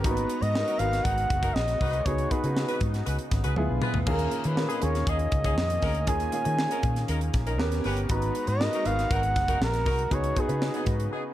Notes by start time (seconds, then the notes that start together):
Already playing: B3
0.04 G#1 G#3 A#3 D#4 F#4 B4 A#5, kick, closed hi-hat
0.11 B3
0.17 closed hi-hat
0.30 closed hi-hat
0.42 G#2 D#5, closed hi-hat
0.55 B3 D#4 F#4 A#4, snare
0.67 D#4 F#4 A#4, closed hi-hat
0.79 G#1 B3 D#4 F#4 A#4 F5, closed hi-hat
0.93 snare, closed hi-hat
1.04 G#1 D#4 F#4 A#4 F#5, kick, closed hi-hat
1.18 closed hi-hat
1.30 F#1, kick, closed hi-hat
1.43 D#4 F#4 A#4, kick, closed hi-hat
1.54 A#1 D#5, snare
1.68 snare, closed hi-hat
1.80 C2 D#4 F#4 B4, kick, open hi-hat
1.93 closed hi-hat
2.05 C#2 C#3 B3 D#4 F#4 G#4 C#5, kick, closed hi-hat
2.18 closed hi-hat
2.31 B3 D#4 F#4 G#4 B4, kick, closed hi-hat
2.44 C#3 B3 D#4 F#4 G#4, closed hi-hat
2.57 snare
2.68 F#4 G#4 B4, closed hi-hat
2.81 G#2, kick, closed hi-hat
2.94 snare, closed hi-hat
3.06 C#2 F#4 G#4 B4, closed hi-hat
3.19 closed hi-hat
3.31 G#1, kick, snare, closed hi-hat
3.44 C#2 F#4 G#4 B4, closed hi-hat
3.56 D2 D3 F3 G#3 B3 E4 F4 G#4, high tom
3.70 B1
3.82 F4 G#4 B4, mid tom
3.94 D2, floor tom
4.06 D#2 A#2 D#3 A#3 C#4 F4 G#4 A#4, kick, crash
4.19 closed hi-hat
4.31 closed hi-hat
4.44 D#3 B4, closed hi-hat
4.56 A#3 C#4 F4 A#4, snare
4.69 C#4 D#4 G#4, closed hi-hat
4.81 D#2 A#3 C#4 F4 G#4 C#5, closed hi-hat
4.95 snare, closed hi-hat
5.07 D#2 C#4 D#4 G#4 D#5, kick, closed hi-hat
5.19 closed hi-hat
5.32 C#2, kick, closed hi-hat
5.44 C#4 D#4 G#4, kick, closed hi-hat
5.58 F2, snare
5.70 closed hi-hat
5.82 D2 C#4 D#4 A#4, kick, snare, open hi-hat
5.95 closed hi-hat
6.07 D#2 A#3 C#4 F4 G#4 G#5, kick, closed hi-hat
6.20 closed hi-hat
6.32 A#3 C#4 F4 G#4, closed hi-hat
6.44 D#3 A#3 C#4 F4 G#4, closed hi-hat
6.59 snare
6.71 C#4 D#4 A#4, closed hi-hat
6.83 A#2, kick, closed hi-hat
6.96 snare, closed hi-hat
7.08 D#2 C#4 D#4 A#4, closed hi-hat
7.21 closed hi-hat
7.34 A#1, kick, snare, closed hi-hat
7.47 C#4 D#4 A#4, closed hi-hat
7.58 D#2 B3 C#4 G4 A#4, snare
7.72 snare, closed hi-hat
7.84 G1 C#4 G4 B4, snare, open hi-hat
7.97 closed hi-hat
8.09 G#1 G#3 B3 D#4 F#4 B4 A#5, kick, closed hi-hat
8.22 closed hi-hat
8.35 closed hi-hat
8.47 G#2 D#5, closed hi-hat
8.60 B3 D#4 F#4 A#4, snare
8.73 D#4 F#4 A#4, closed hi-hat
8.84 G#1 B3 D#4 F#4 A#4 F5, closed hi-hat
8.99 snare, closed hi-hat
9.11 G#1 D#4 F#4 A#4 F#5, kick, closed hi-hat
9.23 closed hi-hat
9.36 F#1, kick, snare, closed hi-hat
9.48 D#4 F#4 A#4, kick, closed hi-hat
9.61 A#1 A#4, snare
9.74 snare, closed hi-hat
9.86 C2 D#4 F#4 A#4, kick, snare, open hi-hat
9.99 closed hi-hat
10.10 C#2 C#3 B3 D#4 F#4 G#4, kick, closed hi-hat
10.14 C#5
10.24 closed hi-hat
10.36 B3 D#4 F#4 G#4, kick, closed hi-hat
10.40 G#4
10.48 C#3 B3 D#4 F#4 B4, closed hi-hat
10.62 snare
10.74 B3 D#4 G#4, closed hi-hat
10.86 G#2, kick, closed hi-hat
11.00 closed hi-hat
11.12 B3 D#4 G#4